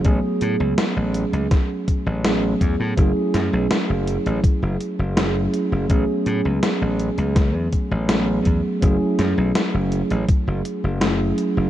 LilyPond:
<<
  \new Staff \with { instrumentName = "Tine electric piano" } { \time 4/4 \key a \major \tempo 4 = 82 <fis a b cis' gis'>2. <fis a b cis' gis'>4 | <fis a cis' e' gis'>2. <fis a cis' e' gis'>4 | <fis a b cis' gis'>2. <fis a b cis' gis'>4 | <fis a cis' e' gis'>2. <fis a cis' e' gis'>4 | }
  \new Staff \with { instrumentName = "Slap bass" } { \clef bass \time 4/4 \key a \major a,,16 r16 a,16 cis,16 r16 a,,16 r16 cis,16 r8. a,,8. e,16 a,16 | fis,,16 r16 fis,16 b,,16 r16 fis,,16 r16 a,,16 r16 fis,,16 r16 fis,,8. r16 fis,,16 | a,,16 r16 a,16 cis,16 r16 a,,16 r16 cis,8 e,16 r16 a,,8. e,16 r16 | fis,,16 r16 fis,16 b,,16 r16 fis,,16 r16 a,,16 r16 fis,,16 r16 fis,,8. r16 fis,,16 | }
  \new DrumStaff \with { instrumentName = "Drums" } \drummode { \time 4/4 <hh bd>8 hh8 <hh sn>8 hh16 hh16 <hh bd sn>8 <hh bd>8 <hh sn>8 <hh bd>8 | <hh bd>8 <hh sn>8 <hh sn>8 hh16 hh16 <hh bd>8 hh8 <hh sn>8 hh8 | <hh bd>8 hh8 <hh sn>8 hh16 hh16 <hh bd sn>8 <hh bd>8 <hh sn>8 <hh bd>8 | <hh bd>8 <hh sn>8 <hh sn>8 hh16 hh16 <hh bd>8 hh8 <hh sn>8 hh8 | }
>>